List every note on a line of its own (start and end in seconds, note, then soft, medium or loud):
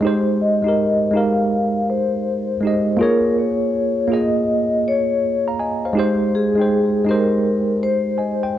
0.01 0.59 G#3 medium
0.01 0.60 D#4 medium
0.01 0.37 C5 medium
0.05 0.61 G4 medium
0.05 0.62 C5 medium
0.41 1.11 D#5 medium
0.62 1.10 G#3 medium
0.62 1.12 D#4 medium
0.66 1.13 G4 medium
0.66 1.14 A#4 medium
1.11 2.55 G#3 medium
1.11 2.56 D#4 medium
1.15 2.57 G4 medium
1.15 2.58 A#4 medium
1.15 1.85 F5 medium
1.90 2.96 C5 medium
2.61 2.97 G#3 medium
2.61 2.98 D#4 medium
2.65 2.99 G4 medium
2.65 3.01 D#5 medium
2.97 4.05 A#3 loud
2.97 4.06 F4 medium
3.01 4.07 G#4 medium
3.01 3.34 A#4 loud
3.01 4.08 C#5 loud
3.38 4.08 C#5 medium
4.08 5.52 A#3 medium
4.08 5.53 F4 medium
4.12 5.54 G#4 medium
4.12 4.86 D#5 medium
4.12 5.24 D#5 medium
4.88 5.44 C#5 medium
5.48 5.60 F5 soft
5.48 5.59 A#5 medium
5.59 5.83 D#5 medium
5.59 5.82 G#5 medium
5.85 5.98 C5 soft
5.85 6.20 F5 medium
5.93 6.52 G#3 medium
5.93 6.53 D#4 medium
5.97 6.54 G4 medium
5.97 6.31 C5 medium
5.97 6.55 C5 medium
6.35 7.04 G#4 medium
6.55 7.03 G#3 medium
6.55 7.05 D#4 medium
6.59 7.07 C5 medium
6.59 7.06 G5 medium
7.04 8.48 G#3 medium
7.04 8.49 D#4 medium
7.08 8.50 G4 medium
7.08 7.78 A#4 medium
7.08 7.83 C5 medium
7.83 8.58 C5 medium
8.18 8.42 D#5 soft
8.18 8.41 G#5 soft
8.43 8.55 C5 medium
8.43 8.55 G5 medium